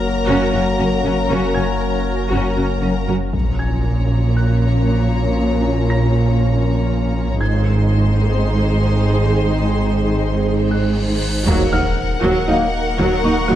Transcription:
Already playing: F#1 F#3 A#3 C#4 F#4 A#4 A#5 F6
0.28 F#1 F#2 C#4 F#4
0.53 F#1 F#2 C#4 F#4
0.80 F#1 F#2 C#4
1.05 F#1 F#2 C#4 F#4
1.30 F#1 F#2 C#4 F#4
1.54 F#1 F#2 C#4 F#4 G#5 G#6
2.32 F#1 F#2 C#4 F#4
2.57 F#1 F#2 C#4 F#4
2.82 F#1 F#2 C#4
3.08 F#1 F#2 C#4 F#4
3.32 A#1 A#2 F3 A#3 C#4 F4 A#4 C#5 A#5, impact
3.59 G#5 G#6
4.37 F#6
5.90 A#5 A#6
7.40 G#1 G#2 D#3 G#3 C4 D#4 G#4 C5 C6 G#6
9.44 cymbal swell
10.71 F#6
11.46 D#1 D#2 F#3 A#3 D#4 F#4 A#4 F#5, impact
11.72 D#2 D#4 F#5 F6
12.23 D#2 F#3
12.48 D#2 F#3 A#3 D#4
12.99 D#2 F#3
13.24 D#2 D#4 C#6
13.50 D#2 F#3 A#3 D#4

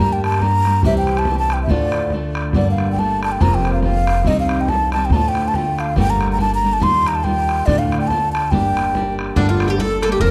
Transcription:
Already playing: G2
0.00 G3 A#3 D4 G4 A#5
0.11 G5, bodhran
0.24 A5, bodhran
0.32 bodhran
0.40 G3 A#3 D4 G4 A#5, bodhran
0.65 G3 A#3 D4 G4, bodhran
0.83 C2 C3 E3 G3 C4 G4 E5, bodhran
0.95 G5, bodhran
1.07 bodhran
1.17 A5, bodhran
1.25 E3 G3, bodhran
1.30 C4 G4
1.39 A5
1.50 G5, bodhran
1.63 E5
1.68 D2 A2 D3 A3 D4 F4 D5, bodhran
1.80 bodhran
1.92 bodhran
2.10 D3 A3 D4, bodhran
2.15 F4
2.35 bodhran
2.53 G1 G2 D3 G3 A3 A#3 D4 D5, bodhran
2.71 F5
2.78 bodhran
2.92 G5
2.96 G3 A3 A#3 A5, bodhran
3.00 D4
3.23 A5, bodhran
3.32 G5
3.40 F1 F2 C3 F3 A#3 C4 F4 A#5, bodhran
3.54 G5
3.65 bodhran
3.73 F5
3.82 F3 A#3 C4 F4 F5, bodhran
4.07 bodhran
4.25 C2 C3 D#3 G3 C4 D#4 D#5, bodhran
4.40 F5
4.49 bodhran
4.61 G5
4.68 D#3 G3 C4 D#4 A5, bodhran
4.92 D#3 G3 C4 A5, bodhran
4.97 D#4
5.05 G5
5.10 D2 A2 D3 A3 A#5, bodhran
5.14 D4 F4 A5
5.28 G5
5.35 bodhran
5.48 A5
5.54 D3 A3 D4 F4 G5, bodhran
5.79 F5, bodhran
5.96 G1 G2 D3 G3 A3 A#3 D4 G5, bodhran
6.10 A#5
6.21 bodhran
6.32 A#5
6.38 G3 A3 A#3 D4 A5, bodhran
6.54 A#5
6.62 G3 A3 A#3 D4
6.73 A5
6.80 D#2 D#3 G3 A#3 D#4 F4 C6, bodhran
7.07 A#5, bodhran
7.15 A5
7.24 G3 A#3 D#4 F4 G5, bodhran
7.49 bodhran
7.66 D2 A2 D3 A3 D4 F4 D5, bodhran
7.78 F5
7.92 bodhran
8.01 G5
8.07 D3 A3 A5, bodhran
8.12 D4 F4
8.32 A5, bodhran
8.51 G1 G3 A#3 D4 G4 G5, bodhran
8.77 bodhran
8.93 G3 A#3 D4 G4, bodhran
9.19 bodhran
9.36 G1 G2 D3 G3 A3 A#3 D4, bodhran
9.49 F4
9.60 bodhran
9.68 G4 A4
9.77 G3 A3 A#3 A4, bodhran
9.81 D4
10.02 G3 A3 A#3 A4, bodhran
10.06 D4
10.12 G4
10.20 F1 F2 C3 F3 A#3 C4 F4 A#4, bodhran

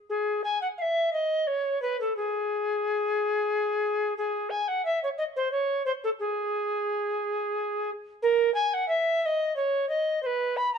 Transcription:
0.09 G#4
0.44 G#5
0.61 F#5
0.78 E5 F5
1.13 D#5
1.47 C#5
1.82 B4
2.01 A4
2.16 G#4
4.18 G#4
4.50 G#5
4.68 F#5
4.85 E5
5.03 C#5
5.18 D#5
5.36 C5
5.52 C#5
5.86 C5
6.04 A4
6.19 G#4
8.22 A#4
8.54 G#5
8.74 F#5
8.88 E5
9.22 D#5 E5
9.56 C#5
9.89 D#5
10.23 B4 C5
10.57 B5
10.74 A#5

